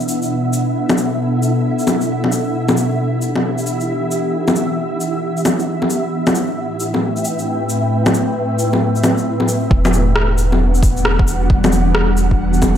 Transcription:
0.00 2.54 B2 medium
0.00 6.12 B3 medium
0.00 6.80 D4 medium
0.00 9.72 E4 medium
0.00 4.00 A4 medium
0.00 9.72 E5 medium
0.00 6.13 F#5 medium
0.00 shaker soft
0.08 shaker medium
0.22 shaker soft
0.53 shaker soft
0.89 low bongo medium
0.89 shaker soft
0.98 shaker soft
1.42 shaker soft
1.79 shaker soft
1.87 low bongo soft
1.87 shaker medium
2.01 shaker soft
2.24 low bongo soft
2.32 shaker soft
2.54 6.13 E3 medium
2.69 6.83 G4 medium
2.69 low bongo medium
2.69 shaker soft
2.77 shaker soft
3.22 shaker soft
3.36 low bongo soft
3.58 shaker soft
3.66 shaker soft
3.81 shaker soft
4.11 shaker soft
4.48 low bongo medium
4.48 shaker soft
4.56 shaker soft
5.01 shaker soft
5.37 shaker soft
5.45 low bongo soft
5.45 shaker soft
5.59 shaker soft
5.82 low bongo soft
5.90 shaker soft
6.13 9.71 A2 medium
6.26 9.71 A3 medium
6.26 low bongo medium
6.26 shaker soft
6.35 shaker soft
6.49 9.71 C4 medium
6.49 11.17 B4 medium
6.49 9.71 G5 medium
6.80 shaker soft
6.94 low bongo soft
7.17 shaker soft
7.25 shaker soft
7.39 shaker soft
7.69 shaker soft
8.06 low bongo medium
8.06 shaker soft
8.14 shaker soft
8.59 shaker soft
8.73 low bongo soft
8.96 shaker soft
9.04 low bongo medium
9.04 shaker medium
9.18 shaker soft
9.40 low bongo soft
9.48 shaker medium
9.70 12.77 E1 medium
9.70 12.77 E3 medium
9.70 12.77 F#4 medium
9.70 12.77 F#5 medium
9.70 kick loud
9.80 12.77 B3 medium
9.80 12.77 D4 medium
9.84 12.77 F#5 medium
9.84 low bongo medium
9.84 shaker soft
9.93 shaker medium
10.12 12.77 G3 medium
10.12 cross-stick loud
10.38 shaker medium
10.52 low bongo soft
10.75 shaker soft
10.83 kick loud
10.83 shaker medium
10.97 shaker soft
11.05 cross-stick loud
11.19 kick loud
11.28 shaker medium
11.50 kick loud
11.64 low bongo medium
11.64 shaker soft
11.72 shaker medium
11.95 cross-stick loud
12.17 shaker medium
12.31 kick medium
12.54 shaker soft
12.62 kick medium
12.62 low bongo medium
12.62 shaker medium

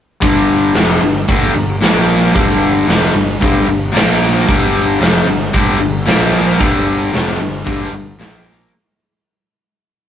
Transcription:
0.21 0.71 G1 medium
0.21 0.73 G2 medium
0.21 0.74 D3 loud
0.21 0.74 G3 loud
0.21 kick loud
0.21 open hi-hat medium
0.74 1.00 F1 medium
0.74 1.00 F2 medium
0.74 1.00 C3 loud
0.74 1.01 F3 loud
0.74 snare loud
0.74 open hi-hat medium
1.01 1.26 G1 medium
1.01 1.22 G2 medium
1.01 1.23 D3 medium
1.28 1.53 G1 medium
1.28 1.53 G2 medium
1.28 1.53 D3 loud
1.28 1.54 G3 medium
1.28 kick loud
1.28 open hi-hat medium
1.54 1.79 G1 medium
1.54 1.76 G2 medium
1.54 1.76 D3 medium
1.81 2.30 A#1 loud
1.81 2.33 A#2 medium
1.81 2.33 F3 medium
1.81 2.34 A#3 loud
1.81 snare loud
1.81 open hi-hat medium
2.33 2.84 G1 medium
2.33 2.86 G2 medium
2.33 2.86 D3 loud
2.33 2.86 G3 medium
2.33 kick loud
2.33 open hi-hat medium
2.87 3.12 F1 medium
2.87 3.13 F2 medium
2.87 3.14 C3 loud
2.87 3.14 F3 loud
2.87 snare loud
2.87 open hi-hat medium
3.14 3.39 G1 medium
3.14 3.35 G2 medium
3.14 3.36 D3 medium
3.40 3.66 G1 medium
3.40 3.66 G2 medium
3.40 3.66 D3 medium
3.40 3.67 G3 loud
3.40 kick loud
3.40 open hi-hat medium
3.67 3.92 G1 medium
3.67 3.89 G2 medium
3.67 3.89 D3 medium
3.92 4.43 A#1 medium
3.92 4.45 A#2 medium
3.92 4.46 F3 loud
3.92 4.46 A#3 loud
3.92 open hi-hat medium
3.97 snare loud
4.47 4.98 G1 medium
4.47 4.99 G2 medium
4.47 4.99 D3 medium
4.47 5.00 G3 loud
4.47 kick loud
4.47 open hi-hat medium
5.00 5.26 F1 medium
5.00 5.26 F2 medium
5.00 5.26 C3 medium
5.00 5.26 F3 medium
5.00 snare loud
5.00 open hi-hat medium
5.27 5.52 G1 medium
5.27 5.48 G2 medium
5.27 5.49 D3 medium
5.53 5.79 G1 medium
5.53 5.77 G2 medium
5.53 5.78 D3 loud
5.53 5.79 G3 loud
5.53 kick loud
5.53 open hi-hat medium
5.79 6.05 G1 medium
5.79 6.01 G2 medium
5.79 6.01 D3 medium
6.06 6.56 A#1 medium
6.06 6.59 A#2 medium
6.06 6.59 F3 medium
6.06 6.59 A#3 loud
6.06 snare loud
6.06 open hi-hat medium
6.59 7.10 G1 medium
6.59 7.12 G2 medium
6.59 7.12 D3 loud
6.59 7.12 G3 loud
6.59 kick loud
6.59 open hi-hat medium
7.13 7.38 F1 medium
7.13 7.39 F2 medium
7.13 7.39 C3 medium
7.13 7.39 F3 loud
7.13 snare loud
7.13 open hi-hat medium
7.40 7.65 G1 medium
7.40 7.61 G2 medium
7.40 7.61 D3 medium
7.65 7.91 G1 medium
7.65 7.91 G2 loud
7.65 7.91 D3 medium
7.65 7.92 G3 medium
7.65 kick loud
7.65 open hi-hat medium
7.92 8.17 G1 medium
7.92 8.14 G2 medium
7.92 8.14 D3 medium
8.19 8.68 A#1 medium
8.19 8.71 A#2 medium
8.19 8.72 F3 medium
8.19 8.71 A#3 loud
8.19 snare loud
8.19 open hi-hat medium

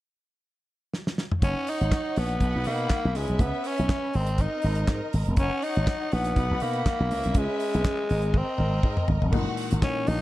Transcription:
0.94 snare medium
1.07 snare medium
1.18 snare medium
1.31 mid tom medium
1.42 1.53 F#1 medium
1.42 1.71 C#4 loud
1.42 2.39 D#4 medium
1.42 2.39 C#5 medium
1.42 2.39 F#5 medium
1.42 kick loud
1.42 closed hi-hat medium
1.67 2.20 D#4 medium
1.67 open hi-hat medium
1.81 1.90 G#1 medium
1.81 closed hi-hat soft
1.92 kick loud
1.92 snare loud
1.92 clap medium
1.92 closed hi-hat soft
2.16 2.37 A#1 medium
2.16 2.69 B3 loud
2.16 open hi-hat medium
2.29 closed hi-hat soft
2.40 2.52 B1 medium
2.40 3.14 D#4 medium
2.40 3.14 F#5 medium
2.40 3.14 B5 medium
2.40 kick medium
2.40 closed hi-hat soft
2.55 2.64 B1 medium
2.64 2.86 B2 medium
2.64 3.18 A#3 medium
2.64 open hi-hat medium
2.78 closed hi-hat soft
2.90 kick medium
2.90 snare medium
2.90 clap medium
2.90 closed hi-hat medium
3.05 3.16 B1 medium
3.14 3.27 C#2 medium
3.14 3.42 G#3 medium
3.14 4.12 C#4 medium
3.14 4.12 B4 medium
3.14 4.12 E5 medium
3.14 snare soft
3.14 open hi-hat medium
3.28 3.38 B1 medium
3.28 closed hi-hat soft
3.39 3.51 C#2 medium
3.39 3.68 B3 medium
3.39 kick medium
3.39 closed hi-hat medium
3.64 4.17 C#4 medium
3.64 open hi-hat medium
3.78 3.88 B1 medium
3.78 closed hi-hat soft
3.89 kick medium
3.89 snare loud
3.89 clap medium
3.89 closed hi-hat medium
4.13 4.46 G#1 medium
4.13 5.34 C4 medium
4.13 4.43 C4 medium
4.13 5.35 A#4 medium
4.13 5.35 D#5 medium
4.13 open hi-hat medium
4.26 closed hi-hat soft
4.38 5.14 D#4 medium
4.38 kick medium
4.38 closed hi-hat medium
4.62 4.84 G#1 medium
4.62 open hi-hat medium
4.75 closed hi-hat soft
4.88 4.99 G#2 medium
4.88 kick medium
4.88 snare medium
4.88 clap medium
4.88 closed hi-hat soft
5.13 5.24 G#1 medium
5.13 open hi-hat medium
5.26 5.37 E1 medium
5.26 closed hi-hat soft
5.37 5.48 F#1 medium
5.37 5.65 C#4 loud
5.37 6.35 D#4 medium
5.37 6.35 C#5 medium
5.37 6.35 F#5 medium
5.37 kick loud
5.37 closed hi-hat medium
5.62 6.15 D#4 loud
5.62 open hi-hat medium
5.76 5.85 G#1 medium
5.76 closed hi-hat soft
5.87 kick medium
5.87 snare loud
5.87 clap medium
5.87 closed hi-hat medium
6.12 6.32 A#1 medium
6.12 6.64 B3 medium
6.12 open hi-hat medium
6.24 closed hi-hat soft
6.36 6.48 B1 medium
6.36 7.09 D#4 medium
6.36 7.09 F#5 medium
6.36 7.09 B5 medium
6.36 kick medium
6.36 closed hi-hat medium
6.51 6.59 B1 medium
6.60 6.82 B2 loud
6.60 7.39 A#3 loud
6.60 open hi-hat medium
6.73 closed hi-hat soft
6.86 kick medium
6.86 snare medium
6.86 clap medium
6.86 closed hi-hat soft
7.00 7.12 B1 medium
7.11 7.22 C#2 medium
7.11 8.08 C#4 medium
7.11 8.08 B4 medium
7.11 8.08 E5 medium
7.11 open hi-hat medium
7.24 7.34 B1 medium
7.24 closed hi-hat soft
7.34 7.46 C#2 medium
7.34 8.39 G#3 loud
7.34 kick loud
7.34 closed hi-hat medium
7.60 open hi-hat medium
7.73 7.83 B1 medium
7.73 closed hi-hat soft
7.85 kick loud
7.85 snare loud
7.85 clap medium
7.85 closed hi-hat medium
8.09 8.41 G#1 medium
8.09 9.30 C4 medium
8.09 9.30 A#4 medium
8.09 9.30 D#5 medium
8.09 open hi-hat medium
8.22 closed hi-hat soft
8.34 9.10 C4 medium
8.34 kick medium
8.34 high tom soft
8.58 8.79 G#1 medium
8.58 mid tom medium
8.83 8.95 G#2 medium
8.83 kick medium
8.97 mid tom medium
9.08 9.20 G#1 medium
9.08 floor tom medium
9.22 9.31 E1 medium
9.22 floor tom medium
9.32 9.44 F#1 medium
9.32 9.74 A#2 loud
9.32 9.75 E3 medium
9.32 9.75 G#3 medium
9.32 9.75 D#4 medium
9.32 10.05 F#4 medium
9.32 10.05 F#5 medium
9.32 kick loud
9.32 crash medium
9.57 open hi-hat medium
9.71 9.81 G#1 medium
9.71 closed hi-hat soft
9.82 10.21 A#2 medium
9.82 10.21 E3 medium
9.82 10.21 G#3 medium
9.82 10.10 C#4 loud
9.82 10.21 D#4 medium
9.82 kick loud
9.82 snare loud
9.82 clap medium
9.82 closed hi-hat soft
10.07 10.21 A#1 medium
10.07 10.21 D#4 loud
10.07 open hi-hat medium

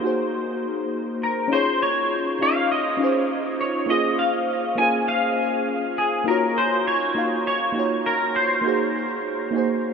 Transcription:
0.00 1.54 A#3 medium
0.00 0.02 D#4 medium
0.00 1.48 D#4 medium
0.00 0.03 F#4 medium
0.00 1.49 F#4 medium
0.00 0.05 G#4 medium
0.00 0.07 C5 loud
0.00 0.30 C5 medium
0.05 1.50 G#4 medium
0.05 1.50 C5 medium
1.23 1.53 A#4 medium
1.48 2.36 C#4 loud
1.48 2.37 D#4 medium
1.48 2.38 F4 medium
1.53 2.38 G#4 medium
1.53 1.82 C5 loud
1.53 2.39 C#5 loud
1.82 2.42 C#5 medium
2.39 2.96 C#4 medium
2.39 2.97 D#4 medium
2.39 2.97 F4 medium
2.39 2.98 G#4 medium
2.39 2.98 D#5 medium
2.39 2.71 F5 loud
2.72 3.27 D#5 medium
2.97 3.85 C#4 loud
2.97 3.86 D#4 medium
2.97 3.86 F4 medium
3.02 3.87 G#4 medium
3.02 3.88 C5 loud
3.61 3.91 C#5 medium
3.86 4.74 A#3 medium
3.86 4.75 C#4 medium
3.86 4.75 F4 medium
3.86 4.19 D#5 loud
3.91 4.76 G#4 medium
3.91 4.77 C5 medium
4.19 4.78 F5 medium
4.75 6.22 A#3 medium
4.75 6.23 C#4 medium
4.75 6.24 F4 medium
4.75 5.06 G#5 loud
4.81 6.25 G#4 medium
4.81 6.26 C5 loud
5.08 5.64 F5 medium
5.98 6.27 G#4 medium
6.24 7.12 A#3 medium
6.24 7.12 D#4 medium
6.24 7.13 F4 medium
6.24 6.58 A#4 loud
6.29 7.14 F#4 medium
6.29 7.15 C#5 loud
6.58 6.87 C5 loud
6.87 7.46 C#5 loud
7.15 7.71 A#3 medium
7.15 7.72 D#4 medium
7.15 7.73 F4 medium
7.15 7.73 F#4 medium
7.15 7.73 F5 medium
7.47 8.06 C#5 loud
7.72 8.60 A#3 medium
7.72 8.61 D#4 medium
7.72 8.62 F4 medium
7.78 8.63 F#4 medium
7.78 8.63 C#5 loud
8.06 8.36 A#4 loud
8.36 9.93 C5 loud
8.61 9.49 A#3 medium
8.61 9.50 D#4 medium
8.61 9.51 F#4 medium
8.67 9.52 G#4 medium
8.67 9.52 C5 loud
9.51 9.93 A#3 medium
9.51 9.93 D#4 medium
9.51 9.93 F#4 medium
9.56 9.93 G#4 medium
9.56 9.93 C5 loud

